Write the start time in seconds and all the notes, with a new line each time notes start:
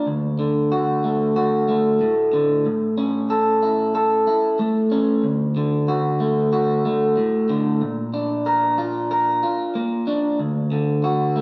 0.07 D2
0.39 D3
0.72 F#4
1.04 A3
1.36 F#4
1.68 A3
2.01 A2
2.33 D3
2.66 A2
2.98 C#4
3.30 A4
3.62 E4
3.95 A4
4.27 E4
4.59 A3
4.92 C#4
5.24 D2
5.56 D3
5.88 F#4
6.20 A3
6.53 F#4
6.85 A3
7.17 A2
7.49 D3
7.81 A#2
8.14 D4
8.46 A#4
8.78 F4
9.11 A#4
9.43 F4
9.75 A#3
10.07 D4
10.39 D2
10.72 D3
11.04 F#4
11.36 A3